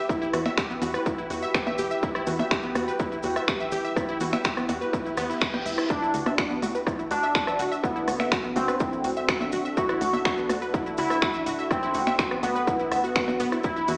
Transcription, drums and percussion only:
0.09 kick, cabasa
0.23 cabasa
0.33 cross-stick, open hi-hat, cabasa
0.46 finger snap, percussion blips, cabasa
0.58 finger snap, kick, cabasa
0.70 cabasa
0.82 open hi-hat, percussion blips, cabasa
0.94 cross-stick, cabasa
1.06 kick, cabasa
1.18 cabasa
1.30 open hi-hat, cabasa
1.42 cabasa
1.54 finger snap, kick, cross-stick, cabasa
1.67 percussion blips, cabasa
1.78 open hi-hat, cabasa
1.91 cabasa
2.03 kick, cabasa
2.15 cross-stick, cabasa
2.27 open hi-hat, cabasa
2.39 percussion blips, cabasa
2.51 finger snap, kick, cabasa
2.63 cabasa
2.75 cross-stick, open hi-hat, percussion blips, cabasa
2.88 cabasa
2.99 kick, cabasa
3.12 cabasa
3.23 open hi-hat, cabasa
3.36 cross-stick, cabasa
3.48 finger snap, kick, cabasa
3.60 cabasa
3.72 open hi-hat, cabasa
3.85 cabasa
3.96 kick, cross-stick, cabasa
4.08 cabasa
4.20 open hi-hat, cabasa
4.33 finger snap, percussion blips, cabasa
4.44 finger snap, kick, cabasa
4.57 cross-stick, cabasa
4.69 open hi-hat, percussion blips, cabasa
4.82 cabasa
4.93 kick, cabasa
5.06 cabasa
5.17 cross-stick, open hi-hat, cabasa
5.31 cabasa
5.41 finger snap, kick, cabasa
5.54 percussion blips, cabasa
5.66 open hi-hat, cabasa
5.78 cross-stick, cabasa
5.90 kick, cabasa
6.03 cabasa
6.14 open hi-hat, cabasa
6.26 cross-stick, percussion blips, cabasa
6.38 finger snap, kick, cabasa
6.51 cabasa
6.62 open hi-hat, percussion blips, cabasa
6.75 cabasa
6.87 kick, cross-stick, cabasa
6.99 cabasa
7.11 open hi-hat, cabasa
7.23 cabasa
7.35 finger snap, kick, cabasa
7.47 cross-stick, cabasa
7.59 open hi-hat, cabasa
7.72 cabasa
7.84 kick, cabasa
7.96 cabasa
8.08 cross-stick, open hi-hat, cabasa
8.20 finger snap, percussion blips, cabasa
8.32 finger snap, kick, cabasa
8.44 cabasa
8.56 open hi-hat, percussion blips, cabasa
8.68 cross-stick, cabasa
8.80 kick, cabasa
8.93 cabasa
9.04 open hi-hat, cabasa
9.17 cabasa
9.29 finger snap, kick, cross-stick, cabasa
9.41 percussion blips, cabasa
9.52 open hi-hat, cabasa
9.65 cabasa
9.77 kick, cabasa
9.89 cross-stick, cabasa
10.01 open hi-hat, cabasa
10.13 percussion blips, cabasa
10.25 finger snap, kick, cabasa
10.38 cabasa
10.49 cross-stick, open hi-hat, percussion blips, cabasa
10.62 cabasa
10.74 kick, cabasa
10.86 cabasa
10.97 open hi-hat, cabasa
11.10 cross-stick, cabasa
11.22 finger snap, kick, cabasa
11.34 cabasa
11.46 open hi-hat, cabasa
11.59 cabasa
11.71 kick, cross-stick, cabasa
11.83 cabasa
11.94 open hi-hat, cabasa
12.07 finger snap, percussion blips, cabasa
12.19 finger snap, kick, cabasa
12.31 cross-stick, cabasa
12.43 open hi-hat, percussion blips, cabasa
12.56 cabasa
12.67 kick, cabasa
12.79 cabasa
12.92 cross-stick, open hi-hat, cabasa
13.04 cabasa
13.15 finger snap, kick, cabasa
13.28 percussion blips, cabasa
13.40 open hi-hat, cabasa
13.52 cross-stick, cabasa
13.63 kick, cabasa
13.77 cabasa
13.88 open hi-hat, cabasa

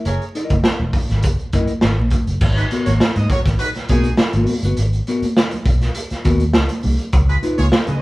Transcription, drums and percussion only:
0.05 closed hi-hat, muted conga
0.21 closed hi-hat
0.35 closed hi-hat
0.50 kick, closed hi-hat, high conga
0.64 snare
0.81 high conga, low conga
0.93 kick, open hi-hat, low conga
1.10 snare, closed hi-hat
1.23 kick, closed hi-hat, muted conga
1.39 closed hi-hat
1.52 kick, closed hi-hat, high conga
1.67 closed hi-hat, high conga
1.81 snare
2.00 high conga
2.10 kick, closed hi-hat, high conga, low conga
2.27 closed hi-hat
2.41 kick, crash, muted conga
2.57 closed hi-hat
2.71 closed hi-hat, muted conga
2.86 closed hi-hat, high conga
3.00 snare
3.16 closed hi-hat, high conga, low conga
3.30 kick, closed hi-hat, low conga
3.46 kick, snare, closed hi-hat
3.59 closed hi-hat
3.75 snare, closed hi-hat
3.88 kick, closed hi-hat, muted conga, high conga
4.04 closed hi-hat, high conga
4.17 snare, muted conga
4.33 closed hi-hat, high conga
4.46 open hi-hat, muted conga, high conga, low conga
4.63 closed hi-hat
4.77 closed hi-hat
4.93 closed hi-hat
5.07 closed hi-hat, muted conga
5.22 closed hi-hat, high conga
5.37 snare
5.51 closed hi-hat, high conga, low conga
5.66 kick, closed hi-hat, low conga
5.81 snare, closed hi-hat
5.95 closed hi-hat, muted conga
6.10 snare, closed hi-hat
6.25 kick, closed hi-hat, high conga
6.40 closed hi-hat, high conga
6.53 snare
6.69 closed hi-hat, high conga
6.83 open hi-hat, muted conga, high conga, low conga
6.99 closed hi-hat
7.12 kick, closed hi-hat, muted conga
7.29 closed hi-hat
7.43 closed hi-hat, muted conga
7.57 closed hi-hat, high conga
7.72 snare
7.87 closed hi-hat, high conga, low conga

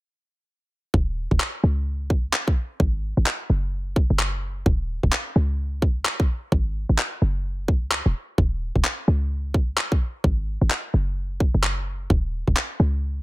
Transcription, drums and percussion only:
0.94 kick
1.31 kick
1.40 clap
2.10 kick
2.33 clap
2.48 kick
2.80 kick
3.26 clap
3.96 kick
4.19 clap
4.66 kick
5.03 kick
5.12 clap
5.82 kick
6.05 clap
6.20 kick
6.52 kick
6.98 clap
7.68 kick
7.92 clap
8.38 kick
8.76 kick
8.85 clap
9.54 kick
9.78 clap
9.92 kick
10.24 kick
10.71 clap
11.40 kick
11.64 clap
12.10 kick
12.48 kick
12.57 clap

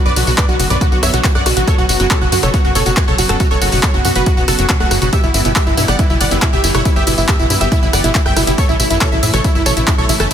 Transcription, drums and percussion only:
0.06 tambourine
0.16 open hi-hat, tambourine
0.27 open hi-hat, tambourine
0.38 kick, clap, closed hi-hat, tambourine
0.49 tambourine
0.60 open hi-hat, tambourine
0.70 closed hi-hat, tambourine
0.81 kick, closed hi-hat, tambourine
0.92 tambourine
1.03 cross-stick, open hi-hat, tambourine
1.14 closed hi-hat, tambourine
1.24 kick, clap, closed hi-hat, tambourine
1.35 cross-stick, tambourine
1.46 cross-stick, open hi-hat, tambourine
1.57 closed hi-hat, tambourine
1.68 kick, closed hi-hat, tambourine
1.78 tambourine
1.89 open hi-hat, tambourine
2.00 closed hi-hat, tambourine
2.11 kick, clap, closed hi-hat, tambourine
2.22 tambourine
2.32 open hi-hat, tambourine
2.43 cross-stick, closed hi-hat, tambourine
2.54 kick, closed hi-hat, tambourine
2.65 tambourine
2.75 open hi-hat, tambourine
2.86 closed hi-hat, tambourine
2.97 kick, clap, closed hi-hat, tambourine
3.08 tambourine
3.18 open hi-hat, tambourine
3.29 cross-stick, closed hi-hat
3.40 kick, closed hi-hat, tambourine
3.51 tambourine
3.62 open hi-hat, tambourine
3.72 open hi-hat, tambourine
3.83 kick, clap, tambourine
3.94 tambourine
4.05 open hi-hat, tambourine
4.16 closed hi-hat, tambourine
4.26 kick, closed hi-hat, tambourine
4.37 tambourine
4.48 cross-stick, open hi-hat, tambourine
4.59 closed hi-hat, tambourine
4.69 kick, clap, closed hi-hat, tambourine
4.80 cross-stick, tambourine
4.91 cross-stick, open hi-hat, tambourine
5.02 closed hi-hat, tambourine
5.13 kick, closed hi-hat, tambourine
5.23 tambourine
5.34 open hi-hat, tambourine
5.45 closed hi-hat, tambourine
5.56 kick, clap, closed hi-hat, tambourine
5.67 tambourine
5.77 open hi-hat, tambourine
5.88 cross-stick, closed hi-hat, tambourine
5.99 kick, closed hi-hat, tambourine
6.10 tambourine
6.21 open hi-hat, tambourine
6.31 closed hi-hat, tambourine
6.42 kick, clap, closed hi-hat, tambourine
6.53 tambourine
6.64 open hi-hat, tambourine
6.75 cross-stick, closed hi-hat, tambourine
6.85 kick, closed hi-hat, tambourine
6.96 tambourine
7.07 open hi-hat, tambourine
7.18 open hi-hat, tambourine
7.29 kick, clap, closed hi-hat, tambourine
7.39 tambourine
7.50 open hi-hat, tambourine
7.61 closed hi-hat, tambourine
7.72 kick, closed hi-hat, tambourine
7.83 tambourine
7.93 cross-stick, open hi-hat, tambourine
8.04 closed hi-hat, tambourine
8.15 kick, clap, closed hi-hat, tambourine
8.26 cross-stick, tambourine
8.37 cross-stick, open hi-hat, tambourine
8.47 closed hi-hat, tambourine
8.58 kick, closed hi-hat, tambourine
8.69 tambourine
8.80 open hi-hat, tambourine
8.90 closed hi-hat, tambourine
9.01 kick, clap, closed hi-hat, tambourine
9.12 tambourine
9.23 open hi-hat, tambourine
9.34 cross-stick, closed hi-hat, tambourine
9.44 kick, closed hi-hat, tambourine
9.55 tambourine
9.66 open hi-hat, tambourine
9.77 closed hi-hat, tambourine
9.88 kick, clap, closed hi-hat, tambourine
9.98 tambourine
10.09 open hi-hat, tambourine
10.20 cross-stick, closed hi-hat, tambourine

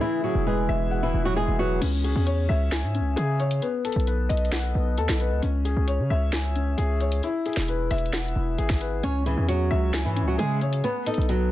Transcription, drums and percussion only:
1.82 closed hi-hat, crash
2.04 closed hi-hat
2.27 closed hi-hat
2.72 snare, closed hi-hat
2.95 closed hi-hat
3.17 closed hi-hat
3.40 closed hi-hat
3.51 closed hi-hat
3.62 closed hi-hat
3.85 closed hi-hat
3.92 closed hi-hat
4.00 closed hi-hat
4.07 closed hi-hat
4.30 closed hi-hat
4.37 closed hi-hat
4.45 closed hi-hat
4.52 snare, closed hi-hat
4.98 closed hi-hat
5.09 snare
5.20 closed hi-hat
5.43 closed hi-hat
5.65 closed hi-hat
5.88 closed hi-hat
6.33 snare, closed hi-hat
6.56 closed hi-hat
6.78 closed hi-hat
7.01 closed hi-hat
7.12 closed hi-hat
7.23 closed hi-hat
7.46 closed hi-hat
7.53 snare, closed hi-hat
7.61 closed hi-hat
7.68 closed hi-hat
7.91 closed hi-hat, open hi-hat
7.98 closed hi-hat
8.06 closed hi-hat
8.13 snare, closed hi-hat
8.21 closed hi-hat
8.28 closed hi-hat
8.58 closed hi-hat
8.70 kick, snare
8.81 closed hi-hat
9.03 closed hi-hat
9.26 closed hi-hat
9.49 closed hi-hat
9.94 snare, closed hi-hat
10.17 closed hi-hat
10.39 closed hi-hat
10.61 closed hi-hat
10.73 closed hi-hat
10.84 closed hi-hat
11.06 closed hi-hat
11.14 closed hi-hat
11.22 closed hi-hat
11.29 closed hi-hat

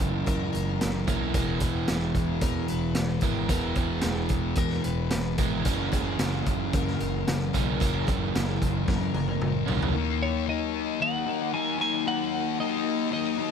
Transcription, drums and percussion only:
0.00 kick, closed hi-hat
0.27 kick, closed hi-hat
0.54 closed hi-hat
0.81 snare, closed hi-hat
1.08 kick, closed hi-hat
1.34 kick, closed hi-hat
1.60 kick, closed hi-hat
1.88 snare, closed hi-hat
2.15 kick, closed hi-hat
2.41 kick, closed hi-hat
2.68 closed hi-hat
2.95 snare, closed hi-hat
3.21 kick, closed hi-hat
3.49 kick, closed hi-hat
3.75 kick, closed hi-hat
4.01 snare, closed hi-hat
4.29 kick, closed hi-hat
4.55 kick, closed hi-hat
4.70 snare
4.84 closed hi-hat
5.10 snare, closed hi-hat
5.38 kick, closed hi-hat
5.65 kick, closed hi-hat
5.93 kick, closed hi-hat
6.19 snare, closed hi-hat
6.46 kick, closed hi-hat
6.73 kick, closed hi-hat
6.87 snare
7.00 closed hi-hat
7.27 snare, closed hi-hat
7.54 kick, closed hi-hat
7.81 kick, closed hi-hat
8.08 kick, closed hi-hat
8.35 snare, closed hi-hat
8.62 kick, closed hi-hat
8.88 kick, snare
9.14 high tom
9.28 high tom
9.41 mid tom
9.68 floor tom
9.82 floor tom

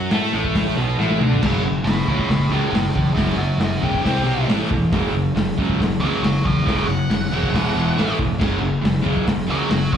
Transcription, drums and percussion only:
0.11 snare, open hi-hat
0.45 kick
0.55 kick, snare, open hi-hat
1.00 snare
1.11 high tom
1.21 mid tom
1.33 floor tom
1.43 kick, snare, crash
1.87 snare, open hi-hat
2.08 kick
2.19 kick
2.30 kick, snare, open hi-hat
2.75 snare, open hi-hat
2.96 kick
3.17 kick, snare, open hi-hat
3.60 snare, open hi-hat
3.83 kick
3.94 kick
4.05 kick, snare, open hi-hat
4.50 snare, open hi-hat
4.71 kick
4.92 kick, snare, open hi-hat
5.37 snare, open hi-hat
5.58 kick
5.70 kick
5.81 kick, snare, open hi-hat
6.24 snare, open hi-hat
6.45 kick
6.67 kick, snare, open hi-hat
7.11 snare, open hi-hat
7.43 kick
7.54 kick, snare, open hi-hat
7.99 snare, open hi-hat
8.19 kick
8.41 kick, snare, crash
8.85 snare, open hi-hat
9.06 kick
9.17 kick
9.27 kick, snare, open hi-hat
9.71 snare, open hi-hat
9.93 kick

